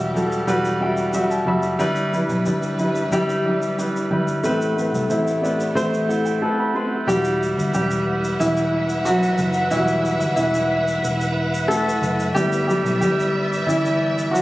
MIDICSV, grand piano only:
0, 0, Header, 1, 2, 480
1, 0, Start_track
1, 0, Tempo, 659341
1, 1310, Time_signature, 4, 2, 24, 8
1, 10497, End_track
2, 0, Start_track
2, 0, Title_t, "Grand piano"
2, 0, Program_c, 0, 0
2, 0, Control_c, 0, 64, 127
2, 0, Note_on_c, 0, 52, 74
2, 0, Note_on_c, 0, 55, 72
2, 0, Note_on_c, 0, 66, 68
2, 0, Note_on_c, 0, 76, 88
2, 0, Note_on_c, 0, 79, 86
2, 75, Note_off_c, 0, 52, 0
2, 79, Note_off_c, 0, 55, 0
2, 82, Note_off_c, 0, 66, 0
2, 84, Note_off_c, 0, 76, 0
2, 107, Note_on_c, 0, 55, 74
2, 112, Note_on_c, 0, 66, 66
2, 120, Note_on_c, 0, 69, 79
2, 323, Note_off_c, 0, 55, 0
2, 325, Note_off_c, 0, 66, 0
2, 329, Note_off_c, 0, 69, 0
2, 344, Note_on_c, 0, 55, 101
2, 350, Note_on_c, 0, 66, 96
2, 355, Note_on_c, 0, 71, 117
2, 561, Note_off_c, 0, 55, 0
2, 564, Note_off_c, 0, 66, 0
2, 567, Note_off_c, 0, 71, 0
2, 585, Note_on_c, 0, 55, 80
2, 589, Note_on_c, 0, 76, 69
2, 592, Note_on_c, 0, 66, 75
2, 598, Note_off_c, 0, 79, 0
2, 598, Note_on_c, 0, 79, 87
2, 802, Note_off_c, 0, 55, 0
2, 806, Note_off_c, 0, 66, 0
2, 809, Note_off_c, 0, 79, 0
2, 813, Note_off_c, 0, 76, 0
2, 826, Note_on_c, 0, 55, 77
2, 830, Note_on_c, 0, 66, 74
2, 830, Note_on_c, 0, 78, 66
2, 835, Note_on_c, 0, 76, 89
2, 941, Note_off_c, 0, 78, 0
2, 948, Note_on_c, 0, 81, 68
2, 1043, Note_off_c, 0, 55, 0
2, 1045, Note_off_c, 0, 66, 0
2, 1047, Note_off_c, 0, 76, 0
2, 1061, Note_off_c, 0, 81, 0
2, 1065, Note_on_c, 0, 55, 79
2, 1072, Note_on_c, 0, 83, 70
2, 1073, Note_on_c, 0, 66, 71
2, 1078, Note_on_c, 0, 76, 91
2, 1282, Note_off_c, 0, 55, 0
2, 1286, Note_off_c, 0, 66, 0
2, 1289, Note_off_c, 0, 76, 0
2, 1294, Note_off_c, 0, 83, 0
2, 1302, Note_on_c, 0, 55, 111
2, 1310, Note_on_c, 0, 43, 76
2, 1311, Note_on_c, 0, 64, 100
2, 1315, Note_on_c, 0, 71, 117
2, 1320, Control_c, 0, 64, 0
2, 1428, Control_c, 0, 64, 127
2, 1521, Note_off_c, 0, 55, 0
2, 1525, Note_off_c, 0, 64, 0
2, 1527, Note_off_c, 0, 71, 0
2, 1552, Note_on_c, 0, 55, 74
2, 1558, Note_on_c, 0, 64, 74
2, 1565, Note_on_c, 0, 71, 83
2, 1766, Note_off_c, 0, 55, 0
2, 1769, Note_off_c, 0, 64, 0
2, 1772, Note_off_c, 0, 71, 0
2, 1792, Note_on_c, 0, 55, 74
2, 1796, Note_on_c, 0, 64, 71
2, 1804, Note_on_c, 0, 71, 85
2, 2001, Note_off_c, 0, 43, 0
2, 2006, Note_off_c, 0, 55, 0
2, 2008, Note_off_c, 0, 64, 0
2, 2012, Note_off_c, 0, 71, 0
2, 2031, Note_on_c, 0, 55, 76
2, 2036, Note_on_c, 0, 64, 71
2, 2043, Note_on_c, 0, 71, 86
2, 2245, Note_off_c, 0, 55, 0
2, 2248, Note_off_c, 0, 64, 0
2, 2252, Note_off_c, 0, 71, 0
2, 2274, Note_on_c, 0, 55, 107
2, 2280, Note_on_c, 0, 64, 93
2, 2282, Note_on_c, 0, 67, 113
2, 2487, Note_off_c, 0, 55, 0
2, 2490, Note_off_c, 0, 64, 0
2, 2491, Note_off_c, 0, 67, 0
2, 2513, Note_on_c, 0, 55, 76
2, 2526, Note_on_c, 0, 64, 74
2, 2529, Note_on_c, 0, 67, 85
2, 2727, Note_off_c, 0, 55, 0
2, 2733, Note_off_c, 0, 64, 0
2, 2735, Note_off_c, 0, 67, 0
2, 2755, Note_on_c, 0, 55, 77
2, 2757, Note_on_c, 0, 64, 67
2, 2766, Note_on_c, 0, 71, 86
2, 2968, Note_off_c, 0, 55, 0
2, 2969, Note_off_c, 0, 64, 0
2, 2973, Note_off_c, 0, 71, 0
2, 2990, Note_on_c, 0, 55, 78
2, 2998, Note_on_c, 0, 64, 71
2, 3008, Note_on_c, 0, 71, 91
2, 3205, Note_off_c, 0, 55, 0
2, 3210, Note_off_c, 0, 64, 0
2, 3214, Note_off_c, 0, 71, 0
2, 3229, Note_on_c, 0, 57, 108
2, 3237, Note_on_c, 0, 45, 71
2, 3238, Note_on_c, 0, 60, 96
2, 3240, Control_c, 0, 64, 0
2, 3242, Note_on_c, 0, 71, 115
2, 3379, Control_c, 0, 64, 127
2, 3445, Note_off_c, 0, 57, 0
2, 3449, Note_off_c, 0, 60, 0
2, 3451, Note_off_c, 0, 71, 0
2, 3465, Note_on_c, 0, 57, 77
2, 3473, Note_on_c, 0, 60, 71
2, 3479, Note_on_c, 0, 71, 86
2, 3683, Note_off_c, 0, 57, 0
2, 3687, Note_off_c, 0, 60, 0
2, 3690, Note_off_c, 0, 71, 0
2, 3707, Note_on_c, 0, 57, 70
2, 3711, Note_on_c, 0, 60, 72
2, 3720, Note_on_c, 0, 64, 80
2, 3924, Note_off_c, 0, 57, 0
2, 3925, Note_off_c, 0, 45, 0
2, 3926, Note_off_c, 0, 60, 0
2, 3931, Note_off_c, 0, 64, 0
2, 3946, Note_on_c, 0, 57, 75
2, 3952, Note_on_c, 0, 74, 65
2, 3953, Note_on_c, 0, 60, 68
2, 3957, Note_on_c, 0, 71, 82
2, 4164, Note_off_c, 0, 57, 0
2, 4167, Note_off_c, 0, 60, 0
2, 4169, Note_off_c, 0, 71, 0
2, 4175, Note_off_c, 0, 74, 0
2, 4188, Note_on_c, 0, 57, 104
2, 4189, Note_on_c, 0, 60, 89
2, 4193, Note_on_c, 0, 76, 71
2, 4197, Note_on_c, 0, 72, 107
2, 4301, Note_off_c, 0, 76, 0
2, 4312, Note_on_c, 0, 76, 65
2, 4404, Note_off_c, 0, 57, 0
2, 4405, Note_off_c, 0, 60, 0
2, 4409, Note_off_c, 0, 72, 0
2, 4423, Note_off_c, 0, 76, 0
2, 4425, Note_on_c, 0, 57, 84
2, 4430, Note_on_c, 0, 60, 74
2, 4432, Note_on_c, 0, 78, 63
2, 4439, Note_on_c, 0, 64, 85
2, 4544, Note_off_c, 0, 78, 0
2, 4550, Note_on_c, 0, 79, 62
2, 4643, Note_off_c, 0, 57, 0
2, 4646, Note_off_c, 0, 60, 0
2, 4650, Note_off_c, 0, 64, 0
2, 4662, Note_off_c, 0, 79, 0
2, 4671, Note_on_c, 0, 57, 82
2, 4674, Note_on_c, 0, 69, 94
2, 4675, Note_on_c, 0, 81, 62
2, 4678, Note_on_c, 0, 60, 71
2, 4681, Note_on_c, 0, 71, 86
2, 4785, Note_off_c, 0, 81, 0
2, 4802, Note_on_c, 0, 83, 66
2, 4890, Note_off_c, 0, 60, 0
2, 4891, Note_off_c, 0, 71, 0
2, 4899, Note_off_c, 0, 57, 0
2, 4909, Note_off_c, 0, 83, 0
2, 4910, Note_on_c, 0, 57, 75
2, 4919, Note_on_c, 0, 84, 68
2, 4920, Note_on_c, 0, 60, 72
2, 4925, Note_on_c, 0, 71, 92
2, 5126, Note_off_c, 0, 57, 0
2, 5131, Note_off_c, 0, 60, 0
2, 5133, Note_off_c, 0, 71, 0
2, 5139, Note_off_c, 0, 84, 0
2, 5149, Note_on_c, 0, 55, 90
2, 5152, Note_on_c, 0, 67, 111
2, 5153, Note_on_c, 0, 64, 54
2, 5159, Note_on_c, 0, 66, 64
2, 5161, Control_c, 0, 64, 0
2, 5167, Note_off_c, 0, 69, 0
2, 5301, Control_c, 0, 64, 127
2, 5605, Note_off_c, 0, 55, 0
2, 5624, Note_off_c, 0, 67, 0
2, 5635, Note_on_c, 0, 67, 99
2, 5639, Note_on_c, 0, 55, 75
2, 5843, Note_off_c, 0, 64, 0
2, 5847, Note_off_c, 0, 66, 0
2, 6086, Note_off_c, 0, 55, 0
2, 6114, Note_on_c, 0, 64, 105
2, 6122, Note_on_c, 0, 52, 75
2, 6128, Note_off_c, 0, 67, 0
2, 6564, Note_off_c, 0, 64, 0
2, 6568, Note_off_c, 0, 52, 0
2, 6590, Note_on_c, 0, 66, 104
2, 6598, Note_on_c, 0, 54, 79
2, 7046, Note_off_c, 0, 54, 0
2, 7067, Note_on_c, 0, 55, 61
2, 7069, Note_off_c, 0, 66, 0
2, 7069, Note_on_c, 0, 64, 108
2, 7079, Note_on_c, 0, 52, 83
2, 7080, Note_on_c, 0, 66, 69
2, 7526, Note_off_c, 0, 52, 0
2, 7528, Note_off_c, 0, 64, 0
2, 7539, Note_on_c, 0, 64, 95
2, 7552, Note_on_c, 0, 52, 70
2, 7760, Note_off_c, 0, 55, 0
2, 7767, Note_off_c, 0, 66, 0
2, 8483, Note_off_c, 0, 52, 0
2, 8504, Note_on_c, 0, 69, 108
2, 8512, Note_on_c, 0, 57, 84
2, 8535, Note_off_c, 0, 64, 0
2, 8959, Note_off_c, 0, 69, 0
2, 8963, Note_off_c, 0, 57, 0
2, 8987, Note_on_c, 0, 57, 61
2, 8987, Note_on_c, 0, 67, 113
2, 8989, Note_on_c, 0, 59, 59
2, 8994, Note_on_c, 0, 64, 68
2, 8997, Note_on_c, 0, 55, 85
2, 9000, Control_c, 0, 64, 0
2, 9123, Control_c, 0, 64, 127
2, 9216, Note_off_c, 0, 67, 0
2, 9218, Note_off_c, 0, 55, 0
2, 9227, Note_on_c, 0, 67, 98
2, 9237, Note_on_c, 0, 55, 81
2, 9458, Note_off_c, 0, 55, 0
2, 9458, Note_off_c, 0, 67, 0
2, 9469, Note_on_c, 0, 67, 98
2, 9485, Note_on_c, 0, 55, 78
2, 9929, Note_off_c, 0, 55, 0
2, 9940, Note_off_c, 0, 64, 0
2, 9951, Note_on_c, 0, 64, 102
2, 9965, Note_off_c, 0, 67, 0
2, 9966, Note_on_c, 0, 52, 78
2, 10410, Note_off_c, 0, 52, 0
2, 10420, Note_on_c, 0, 66, 97
2, 10434, Note_on_c, 0, 54, 76
2, 10446, Note_off_c, 0, 64, 0
2, 10497, Note_off_c, 0, 54, 0
2, 10497, Note_off_c, 0, 57, 0
2, 10497, Note_off_c, 0, 59, 0
2, 10497, Note_off_c, 0, 66, 0
2, 10497, End_track
0, 0, End_of_file